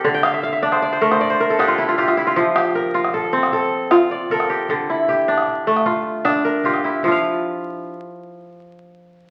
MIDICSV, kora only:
0, 0, Header, 1, 2, 480
1, 0, Start_track
1, 0, Tempo, 388601
1, 49, Time_signature, 12, 3, 24, 8
1, 11489, End_track
2, 0, Start_track
2, 0, Title_t, "Kora"
2, 0, Program_c, 0, 46
2, 0, Note_on_c, 0, 60, 77
2, 0, Note_on_c, 0, 65, 86
2, 0, Note_on_c, 0, 67, 61
2, 0, Note_on_c, 0, 69, 79
2, 0, Note_on_c, 0, 70, 66
2, 0, Note_on_c, 0, 74, 71
2, 55, Note_on_c, 0, 50, 91
2, 177, Note_on_c, 0, 79, 71
2, 296, Note_on_c, 0, 77, 66
2, 414, Note_on_c, 0, 76, 73
2, 489, Note_off_c, 0, 65, 0
2, 528, Note_off_c, 0, 77, 0
2, 533, Note_on_c, 0, 77, 69
2, 598, Note_off_c, 0, 60, 0
2, 644, Note_off_c, 0, 76, 0
2, 649, Note_on_c, 0, 76, 72
2, 701, Note_off_c, 0, 74, 0
2, 773, Note_on_c, 0, 62, 83
2, 773, Note_on_c, 0, 74, 69
2, 892, Note_on_c, 0, 72, 70
2, 1011, Note_off_c, 0, 74, 0
2, 1016, Note_on_c, 0, 74, 72
2, 1138, Note_off_c, 0, 72, 0
2, 1143, Note_on_c, 0, 72, 70
2, 1151, Note_off_c, 0, 70, 0
2, 1202, Note_off_c, 0, 69, 0
2, 1252, Note_on_c, 0, 57, 80
2, 1253, Note_on_c, 0, 70, 74
2, 1328, Note_off_c, 0, 79, 0
2, 1372, Note_off_c, 0, 72, 0
2, 1377, Note_on_c, 0, 72, 68
2, 1484, Note_off_c, 0, 74, 0
2, 1489, Note_on_c, 0, 74, 73
2, 1564, Note_off_c, 0, 67, 0
2, 1602, Note_off_c, 0, 72, 0
2, 1607, Note_on_c, 0, 72, 80
2, 1729, Note_off_c, 0, 70, 0
2, 1734, Note_on_c, 0, 70, 74
2, 1766, Note_off_c, 0, 77, 0
2, 1808, Note_off_c, 0, 57, 0
2, 1854, Note_on_c, 0, 69, 72
2, 1926, Note_off_c, 0, 76, 0
2, 1958, Note_off_c, 0, 62, 0
2, 1963, Note_on_c, 0, 62, 82
2, 1967, Note_on_c, 0, 67, 72
2, 2075, Note_on_c, 0, 65, 77
2, 2201, Note_on_c, 0, 64, 74
2, 2324, Note_off_c, 0, 65, 0
2, 2329, Note_on_c, 0, 65, 74
2, 2439, Note_off_c, 0, 65, 0
2, 2441, Note_off_c, 0, 67, 0
2, 2444, Note_on_c, 0, 65, 77
2, 2446, Note_on_c, 0, 67, 71
2, 2518, Note_off_c, 0, 64, 0
2, 2560, Note_off_c, 0, 65, 0
2, 2565, Note_on_c, 0, 65, 71
2, 2683, Note_on_c, 0, 64, 71
2, 2797, Note_off_c, 0, 65, 0
2, 2802, Note_on_c, 0, 65, 74
2, 2858, Note_off_c, 0, 74, 0
2, 2918, Note_on_c, 0, 53, 86
2, 2945, Note_off_c, 0, 50, 0
2, 2992, Note_off_c, 0, 64, 0
2, 3074, Note_off_c, 0, 72, 0
2, 3151, Note_off_c, 0, 67, 0
2, 3156, Note_on_c, 0, 67, 65
2, 3306, Note_off_c, 0, 70, 0
2, 3399, Note_on_c, 0, 70, 63
2, 3473, Note_off_c, 0, 69, 0
2, 3631, Note_off_c, 0, 65, 0
2, 3636, Note_on_c, 0, 65, 81
2, 3876, Note_on_c, 0, 69, 70
2, 4037, Note_off_c, 0, 62, 0
2, 4110, Note_on_c, 0, 60, 79
2, 4354, Note_off_c, 0, 69, 0
2, 4359, Note_on_c, 0, 69, 74
2, 4433, Note_off_c, 0, 70, 0
2, 4828, Note_off_c, 0, 65, 0
2, 4832, Note_on_c, 0, 65, 67
2, 4835, Note_off_c, 0, 65, 0
2, 4835, Note_on_c, 0, 65, 83
2, 4900, Note_off_c, 0, 67, 0
2, 5077, Note_on_c, 0, 74, 66
2, 5321, Note_off_c, 0, 69, 0
2, 5324, Note_on_c, 0, 70, 66
2, 5325, Note_on_c, 0, 69, 82
2, 5554, Note_on_c, 0, 67, 62
2, 5802, Note_on_c, 0, 50, 83
2, 5808, Note_off_c, 0, 53, 0
2, 6048, Note_on_c, 0, 64, 60
2, 6122, Note_off_c, 0, 65, 0
2, 6279, Note_off_c, 0, 67, 0
2, 6284, Note_on_c, 0, 67, 62
2, 6334, Note_off_c, 0, 60, 0
2, 6446, Note_off_c, 0, 74, 0
2, 6524, Note_on_c, 0, 62, 81
2, 6896, Note_off_c, 0, 70, 0
2, 6953, Note_off_c, 0, 69, 0
2, 7004, Note_on_c, 0, 57, 80
2, 7236, Note_on_c, 0, 65, 69
2, 7310, Note_off_c, 0, 64, 0
2, 7713, Note_off_c, 0, 62, 0
2, 7718, Note_on_c, 0, 62, 82
2, 7721, Note_off_c, 0, 62, 0
2, 7721, Note_on_c, 0, 62, 66
2, 7963, Note_on_c, 0, 70, 67
2, 8029, Note_off_c, 0, 67, 0
2, 8037, Note_off_c, 0, 57, 0
2, 8209, Note_off_c, 0, 65, 0
2, 8212, Note_on_c, 0, 67, 64
2, 8214, Note_on_c, 0, 65, 74
2, 8452, Note_on_c, 0, 64, 62
2, 8693, Note_off_c, 0, 50, 0
2, 8695, Note_on_c, 0, 53, 75
2, 8737, Note_off_c, 0, 65, 0
2, 8742, Note_on_c, 0, 65, 76
2, 8790, Note_on_c, 0, 77, 79
2, 9535, Note_off_c, 0, 70, 0
2, 9795, Note_off_c, 0, 62, 0
2, 9957, Note_off_c, 0, 67, 0
2, 10388, Note_off_c, 0, 64, 0
2, 11489, Note_off_c, 0, 53, 0
2, 11489, Note_off_c, 0, 65, 0
2, 11489, Note_off_c, 0, 77, 0
2, 11489, End_track
0, 0, End_of_file